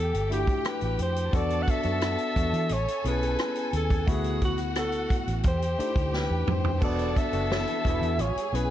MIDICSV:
0, 0, Header, 1, 8, 480
1, 0, Start_track
1, 0, Tempo, 684775
1, 937, Time_signature, 4, 2, 24, 8
1, 6101, End_track
2, 0, Start_track
2, 0, Title_t, "String section"
2, 0, Program_c, 0, 48
2, 0, Note_on_c, 0, 67, 74
2, 0, Note_on_c, 0, 79, 90
2, 913, Note_off_c, 0, 67, 0
2, 913, Note_off_c, 0, 79, 0
2, 931, Note_on_c, 0, 81, 88
2, 932, Note_on_c, 0, 69, 78
2, 1875, Note_off_c, 0, 81, 0
2, 1876, Note_off_c, 0, 69, 0
2, 1896, Note_on_c, 0, 69, 76
2, 1896, Note_on_c, 0, 80, 88
2, 2838, Note_off_c, 0, 69, 0
2, 2838, Note_off_c, 0, 80, 0
2, 2851, Note_on_c, 0, 66, 78
2, 2851, Note_on_c, 0, 78, 89
2, 3795, Note_off_c, 0, 66, 0
2, 3796, Note_off_c, 0, 78, 0
2, 3815, Note_on_c, 0, 67, 76
2, 3815, Note_on_c, 0, 79, 82
2, 4758, Note_off_c, 0, 67, 0
2, 4758, Note_off_c, 0, 79, 0
2, 4777, Note_on_c, 0, 81, 88
2, 4779, Note_on_c, 0, 69, 76
2, 5719, Note_off_c, 0, 81, 0
2, 5720, Note_off_c, 0, 69, 0
2, 5736, Note_on_c, 0, 68, 73
2, 5737, Note_on_c, 0, 80, 84
2, 6101, Note_off_c, 0, 68, 0
2, 6101, Note_off_c, 0, 80, 0
2, 6101, End_track
3, 0, Start_track
3, 0, Title_t, "Alto saxophone"
3, 0, Program_c, 1, 65
3, 0, Note_on_c, 1, 69, 95
3, 209, Note_off_c, 1, 69, 0
3, 232, Note_on_c, 1, 67, 88
3, 474, Note_on_c, 1, 71, 86
3, 485, Note_off_c, 1, 67, 0
3, 706, Note_off_c, 1, 71, 0
3, 716, Note_on_c, 1, 72, 99
3, 955, Note_on_c, 1, 74, 105
3, 966, Note_off_c, 1, 72, 0
3, 1139, Note_on_c, 1, 78, 90
3, 1149, Note_off_c, 1, 74, 0
3, 1193, Note_on_c, 1, 76, 125
3, 1204, Note_off_c, 1, 78, 0
3, 1913, Note_on_c, 1, 73, 112
3, 1923, Note_off_c, 1, 76, 0
3, 2145, Note_off_c, 1, 73, 0
3, 2159, Note_on_c, 1, 71, 98
3, 2600, Note_off_c, 1, 71, 0
3, 2639, Note_on_c, 1, 69, 83
3, 2875, Note_on_c, 1, 68, 90
3, 2886, Note_off_c, 1, 69, 0
3, 3107, Note_off_c, 1, 68, 0
3, 3118, Note_on_c, 1, 66, 93
3, 3222, Note_off_c, 1, 66, 0
3, 3357, Note_on_c, 1, 69, 92
3, 3618, Note_off_c, 1, 69, 0
3, 3840, Note_on_c, 1, 72, 103
3, 4311, Note_on_c, 1, 71, 93
3, 4322, Note_off_c, 1, 72, 0
3, 4558, Note_on_c, 1, 72, 87
3, 4569, Note_off_c, 1, 71, 0
3, 4789, Note_off_c, 1, 72, 0
3, 4797, Note_on_c, 1, 74, 93
3, 5032, Note_on_c, 1, 76, 112
3, 5043, Note_off_c, 1, 74, 0
3, 5753, Note_on_c, 1, 73, 94
3, 5764, Note_off_c, 1, 76, 0
3, 5994, Note_on_c, 1, 71, 86
3, 6004, Note_off_c, 1, 73, 0
3, 6101, Note_off_c, 1, 71, 0
3, 6101, End_track
4, 0, Start_track
4, 0, Title_t, "Tine electric piano"
4, 0, Program_c, 2, 4
4, 121, Control_c, 2, 64, 127
4, 207, Note_on_c, 2, 57, 69
4, 213, Note_on_c, 2, 62, 62
4, 216, Note_on_c, 2, 64, 64
4, 218, Note_on_c, 2, 66, 64
4, 264, Note_off_c, 2, 66, 0
4, 266, Note_on_c, 2, 67, 79
4, 857, Note_off_c, 2, 57, 0
4, 860, Note_off_c, 2, 62, 0
4, 862, Note_off_c, 2, 64, 0
4, 887, Note_off_c, 2, 67, 0
4, 929, Note_on_c, 2, 59, 87
4, 932, Note_on_c, 2, 62, 77
4, 939, Note_on_c, 2, 66, 83
4, 943, Note_on_c, 2, 69, 98
4, 948, Control_c, 2, 64, 0
4, 1057, Control_c, 2, 64, 127
4, 1256, Note_off_c, 2, 59, 0
4, 1258, Note_off_c, 2, 62, 0
4, 1261, Note_off_c, 2, 66, 0
4, 1263, Note_off_c, 2, 69, 0
4, 1288, Note_on_c, 2, 59, 61
4, 1294, Note_on_c, 2, 62, 65
4, 1296, Note_on_c, 2, 66, 59
4, 1301, Note_on_c, 2, 69, 72
4, 1616, Note_off_c, 2, 59, 0
4, 1618, Note_off_c, 2, 62, 0
4, 1620, Note_off_c, 2, 66, 0
4, 1622, Note_off_c, 2, 69, 0
4, 1653, Note_on_c, 2, 59, 57
4, 1656, Note_on_c, 2, 62, 54
4, 1660, Note_on_c, 2, 66, 61
4, 1665, Note_on_c, 2, 69, 68
4, 1895, Note_off_c, 2, 59, 0
4, 1897, Note_off_c, 2, 62, 0
4, 1899, Note_off_c, 2, 66, 0
4, 1901, Note_off_c, 2, 69, 0
4, 1908, Control_c, 2, 64, 0
4, 2051, Control_c, 2, 64, 127
4, 2130, Note_on_c, 2, 59, 63
4, 2135, Note_on_c, 2, 61, 61
4, 2139, Note_on_c, 2, 64, 65
4, 2143, Note_on_c, 2, 68, 77
4, 2779, Note_off_c, 2, 59, 0
4, 2782, Note_off_c, 2, 61, 0
4, 2784, Note_off_c, 2, 64, 0
4, 2786, Note_off_c, 2, 68, 0
4, 2849, Note_on_c, 2, 57, 85
4, 2852, Note_on_c, 2, 59, 71
4, 2856, Note_on_c, 2, 64, 83
4, 2862, Note_on_c, 2, 66, 88
4, 2866, Control_c, 2, 64, 0
4, 2998, Control_c, 2, 64, 127
4, 3714, Note_off_c, 2, 57, 0
4, 3716, Note_off_c, 2, 59, 0
4, 3718, Note_off_c, 2, 64, 0
4, 3721, Note_off_c, 2, 66, 0
4, 3826, Control_c, 2, 64, 0
4, 3931, Control_c, 2, 64, 127
4, 4055, Note_on_c, 2, 57, 73
4, 4059, Note_on_c, 2, 62, 68
4, 4063, Note_on_c, 2, 63, 49
4, 4067, Note_on_c, 2, 67, 79
4, 4107, Note_off_c, 2, 63, 0
4, 4109, Note_on_c, 2, 64, 62
4, 4702, Note_off_c, 2, 57, 0
4, 4704, Note_off_c, 2, 62, 0
4, 4708, Note_off_c, 2, 67, 0
4, 4729, Note_off_c, 2, 64, 0
4, 4773, Note_on_c, 2, 59, 90
4, 4776, Note_on_c, 2, 62, 76
4, 4780, Note_on_c, 2, 66, 80
4, 4786, Note_on_c, 2, 69, 93
4, 4789, Control_c, 2, 64, 0
4, 4919, Control_c, 2, 64, 127
4, 5099, Note_off_c, 2, 59, 0
4, 5100, Note_off_c, 2, 62, 0
4, 5102, Note_off_c, 2, 66, 0
4, 5105, Note_off_c, 2, 69, 0
4, 5133, Note_on_c, 2, 59, 67
4, 5138, Note_on_c, 2, 62, 63
4, 5142, Note_on_c, 2, 66, 59
4, 5147, Note_on_c, 2, 69, 70
4, 5459, Note_off_c, 2, 59, 0
4, 5461, Note_off_c, 2, 62, 0
4, 5463, Note_off_c, 2, 66, 0
4, 5466, Note_off_c, 2, 69, 0
4, 5496, Note_on_c, 2, 59, 65
4, 5498, Note_on_c, 2, 62, 51
4, 5503, Note_on_c, 2, 66, 56
4, 5505, Note_on_c, 2, 69, 66
4, 5737, Note_off_c, 2, 59, 0
4, 5739, Note_off_c, 2, 62, 0
4, 5741, Note_off_c, 2, 66, 0
4, 5742, Note_off_c, 2, 69, 0
4, 5749, Control_c, 2, 64, 0
4, 5886, Control_c, 2, 64, 127
4, 5973, Note_on_c, 2, 59, 72
4, 5978, Note_on_c, 2, 61, 62
4, 5981, Note_on_c, 2, 64, 60
4, 5986, Note_on_c, 2, 68, 79
4, 6101, Note_off_c, 2, 59, 0
4, 6101, Note_off_c, 2, 61, 0
4, 6101, Note_off_c, 2, 64, 0
4, 6101, Note_off_c, 2, 68, 0
4, 6101, End_track
5, 0, Start_track
5, 0, Title_t, "Trombone section"
5, 0, Program_c, 3, 61
5, 4780, Note_on_c, 3, 47, 91
5, 4781, Note_on_c, 3, 59, 88
5, 4972, Note_off_c, 3, 47, 0
5, 4972, Note_off_c, 3, 59, 0
5, 5019, Note_on_c, 3, 62, 72
5, 5020, Note_on_c, 3, 50, 66
5, 5211, Note_off_c, 3, 50, 0
5, 5211, Note_off_c, 3, 62, 0
5, 5260, Note_on_c, 3, 52, 72
5, 5260, Note_on_c, 3, 64, 70
5, 5451, Note_off_c, 3, 64, 0
5, 5452, Note_off_c, 3, 52, 0
5, 5500, Note_on_c, 3, 52, 85
5, 5501, Note_on_c, 3, 64, 99
5, 5952, Note_off_c, 3, 52, 0
5, 5952, Note_off_c, 3, 64, 0
5, 6101, End_track
6, 0, Start_track
6, 0, Title_t, "Fingered electric bass"
6, 0, Program_c, 4, 33
6, 0, Note_on_c, 4, 40, 99
6, 82, Note_off_c, 4, 40, 0
6, 95, Note_on_c, 4, 31, 92
6, 309, Note_off_c, 4, 31, 0
6, 576, Note_on_c, 4, 33, 83
6, 683, Note_off_c, 4, 33, 0
6, 694, Note_on_c, 4, 41, 86
6, 908, Note_off_c, 4, 41, 0
6, 933, Note_on_c, 4, 40, 91
6, 1148, Note_off_c, 4, 40, 0
6, 1295, Note_on_c, 4, 42, 79
6, 1509, Note_off_c, 4, 42, 0
6, 1656, Note_on_c, 4, 40, 84
6, 1763, Note_off_c, 4, 40, 0
6, 1774, Note_on_c, 4, 52, 94
6, 1882, Note_off_c, 4, 52, 0
6, 1894, Note_on_c, 4, 33, 87
6, 2002, Note_off_c, 4, 33, 0
6, 2134, Note_on_c, 4, 35, 79
6, 2349, Note_off_c, 4, 35, 0
6, 2615, Note_on_c, 4, 39, 74
6, 2829, Note_off_c, 4, 39, 0
6, 2857, Note_on_c, 4, 38, 96
6, 3550, Note_off_c, 4, 38, 0
6, 3697, Note_on_c, 4, 33, 74
6, 3816, Note_off_c, 4, 33, 0
6, 3816, Note_on_c, 4, 40, 91
6, 4030, Note_off_c, 4, 40, 0
6, 4177, Note_on_c, 4, 38, 83
6, 4391, Note_off_c, 4, 38, 0
6, 4418, Note_on_c, 4, 40, 82
6, 4525, Note_off_c, 4, 40, 0
6, 4539, Note_on_c, 4, 41, 72
6, 4752, Note_off_c, 4, 41, 0
6, 4779, Note_on_c, 4, 28, 96
6, 4992, Note_off_c, 4, 28, 0
6, 5138, Note_on_c, 4, 30, 66
6, 5352, Note_off_c, 4, 30, 0
6, 5502, Note_on_c, 4, 28, 83
6, 5607, Note_off_c, 4, 28, 0
6, 5617, Note_on_c, 4, 40, 94
6, 5724, Note_off_c, 4, 40, 0
6, 5736, Note_on_c, 4, 33, 86
6, 5844, Note_off_c, 4, 33, 0
6, 5976, Note_on_c, 4, 35, 84
6, 6101, Note_off_c, 4, 35, 0
6, 6101, End_track
7, 0, Start_track
7, 0, Title_t, "Muted fingered electric bass strokes"
7, 2014, Note_on_c, 9, 29, 44
7, 2084, Note_off_c, 9, 29, 0
7, 3577, Note_on_c, 9, 29, 46
7, 3647, Note_off_c, 9, 29, 0
7, 4060, Note_on_c, 9, 29, 43
7, 4130, Note_off_c, 9, 29, 0
7, 6101, End_track
8, 0, Start_track
8, 0, Title_t, "Drums"
8, 102, Note_on_c, 9, 42, 51
8, 172, Note_off_c, 9, 42, 0
8, 223, Note_on_c, 9, 42, 71
8, 293, Note_off_c, 9, 42, 0
8, 332, Note_on_c, 9, 36, 84
8, 342, Note_on_c, 9, 42, 45
8, 402, Note_off_c, 9, 36, 0
8, 412, Note_off_c, 9, 42, 0
8, 453, Note_on_c, 9, 42, 85
8, 460, Note_on_c, 9, 37, 112
8, 523, Note_off_c, 9, 42, 0
8, 530, Note_off_c, 9, 37, 0
8, 568, Note_on_c, 9, 42, 46
8, 638, Note_off_c, 9, 42, 0
8, 692, Note_on_c, 9, 42, 68
8, 762, Note_off_c, 9, 42, 0
8, 815, Note_on_c, 9, 42, 50
8, 885, Note_off_c, 9, 42, 0
8, 933, Note_on_c, 9, 42, 84
8, 934, Note_on_c, 9, 36, 115
8, 1003, Note_off_c, 9, 42, 0
8, 1004, Note_off_c, 9, 36, 0
8, 1054, Note_on_c, 9, 42, 43
8, 1124, Note_off_c, 9, 42, 0
8, 1175, Note_on_c, 9, 36, 86
8, 1176, Note_on_c, 9, 42, 75
8, 1245, Note_off_c, 9, 36, 0
8, 1246, Note_off_c, 9, 42, 0
8, 1285, Note_on_c, 9, 42, 50
8, 1355, Note_off_c, 9, 42, 0
8, 1412, Note_on_c, 9, 42, 84
8, 1417, Note_on_c, 9, 37, 98
8, 1482, Note_off_c, 9, 42, 0
8, 1487, Note_off_c, 9, 37, 0
8, 1531, Note_on_c, 9, 42, 47
8, 1601, Note_off_c, 9, 42, 0
8, 1656, Note_on_c, 9, 36, 82
8, 1657, Note_on_c, 9, 37, 33
8, 1661, Note_on_c, 9, 42, 69
8, 1726, Note_off_c, 9, 36, 0
8, 1727, Note_off_c, 9, 37, 0
8, 1731, Note_off_c, 9, 42, 0
8, 1779, Note_on_c, 9, 42, 51
8, 1849, Note_off_c, 9, 42, 0
8, 1887, Note_on_c, 9, 42, 75
8, 1958, Note_off_c, 9, 42, 0
8, 2021, Note_on_c, 9, 42, 57
8, 2091, Note_off_c, 9, 42, 0
8, 2139, Note_on_c, 9, 42, 71
8, 2209, Note_off_c, 9, 42, 0
8, 2262, Note_on_c, 9, 42, 49
8, 2333, Note_off_c, 9, 42, 0
8, 2373, Note_on_c, 9, 42, 81
8, 2380, Note_on_c, 9, 37, 104
8, 2443, Note_off_c, 9, 42, 0
8, 2450, Note_off_c, 9, 37, 0
8, 2492, Note_on_c, 9, 42, 50
8, 2562, Note_off_c, 9, 42, 0
8, 2615, Note_on_c, 9, 42, 68
8, 2685, Note_off_c, 9, 42, 0
8, 2737, Note_on_c, 9, 36, 81
8, 2740, Note_on_c, 9, 42, 50
8, 2807, Note_off_c, 9, 36, 0
8, 2810, Note_off_c, 9, 42, 0
8, 2857, Note_on_c, 9, 36, 116
8, 2858, Note_on_c, 9, 42, 93
8, 2927, Note_off_c, 9, 36, 0
8, 2928, Note_off_c, 9, 42, 0
8, 2974, Note_on_c, 9, 42, 45
8, 3044, Note_off_c, 9, 42, 0
8, 3095, Note_on_c, 9, 42, 69
8, 3097, Note_on_c, 9, 36, 87
8, 3165, Note_off_c, 9, 42, 0
8, 3167, Note_off_c, 9, 36, 0
8, 3209, Note_on_c, 9, 42, 49
8, 3279, Note_off_c, 9, 42, 0
8, 3333, Note_on_c, 9, 42, 85
8, 3337, Note_on_c, 9, 37, 96
8, 3403, Note_off_c, 9, 42, 0
8, 3408, Note_off_c, 9, 37, 0
8, 3450, Note_on_c, 9, 42, 49
8, 3520, Note_off_c, 9, 42, 0
8, 3577, Note_on_c, 9, 36, 79
8, 3580, Note_on_c, 9, 42, 74
8, 3647, Note_off_c, 9, 36, 0
8, 3650, Note_off_c, 9, 42, 0
8, 3699, Note_on_c, 9, 42, 52
8, 3769, Note_off_c, 9, 42, 0
8, 3810, Note_on_c, 9, 42, 71
8, 3816, Note_on_c, 9, 36, 89
8, 3880, Note_off_c, 9, 42, 0
8, 3886, Note_off_c, 9, 36, 0
8, 3942, Note_on_c, 9, 42, 49
8, 4012, Note_off_c, 9, 42, 0
8, 4064, Note_on_c, 9, 42, 69
8, 4134, Note_off_c, 9, 42, 0
8, 4176, Note_on_c, 9, 36, 92
8, 4183, Note_on_c, 9, 42, 46
8, 4246, Note_off_c, 9, 36, 0
8, 4253, Note_off_c, 9, 42, 0
8, 4302, Note_on_c, 9, 38, 48
8, 4372, Note_off_c, 9, 38, 0
8, 4539, Note_on_c, 9, 45, 85
8, 4609, Note_off_c, 9, 45, 0
8, 4657, Note_on_c, 9, 43, 80
8, 4728, Note_off_c, 9, 43, 0
8, 4779, Note_on_c, 9, 36, 110
8, 4780, Note_on_c, 9, 49, 76
8, 4849, Note_off_c, 9, 36, 0
8, 4850, Note_off_c, 9, 49, 0
8, 4900, Note_on_c, 9, 42, 49
8, 4970, Note_off_c, 9, 42, 0
8, 5022, Note_on_c, 9, 36, 88
8, 5026, Note_on_c, 9, 42, 70
8, 5092, Note_off_c, 9, 36, 0
8, 5096, Note_off_c, 9, 42, 0
8, 5137, Note_on_c, 9, 42, 50
8, 5207, Note_off_c, 9, 42, 0
8, 5268, Note_on_c, 9, 38, 91
8, 5339, Note_off_c, 9, 38, 0
8, 5380, Note_on_c, 9, 42, 46
8, 5450, Note_off_c, 9, 42, 0
8, 5502, Note_on_c, 9, 36, 83
8, 5511, Note_on_c, 9, 42, 70
8, 5572, Note_off_c, 9, 36, 0
8, 5582, Note_off_c, 9, 42, 0
8, 5627, Note_on_c, 9, 42, 50
8, 5697, Note_off_c, 9, 42, 0
8, 5740, Note_on_c, 9, 42, 72
8, 5810, Note_off_c, 9, 42, 0
8, 5871, Note_on_c, 9, 42, 54
8, 5941, Note_off_c, 9, 42, 0
8, 5991, Note_on_c, 9, 42, 71
8, 6061, Note_off_c, 9, 42, 0
8, 6101, End_track
0, 0, End_of_file